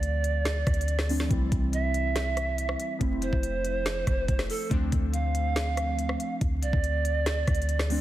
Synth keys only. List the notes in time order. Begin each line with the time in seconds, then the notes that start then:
Already playing: F3 A3 C4 D4
1.09 F3 A3 C4 D4
1.28 E3 G3 C4 E4
2.99 F3 A3 C4 E4
4.70 F3 A3 C4 D4
7.90 F3 A3 C4 D4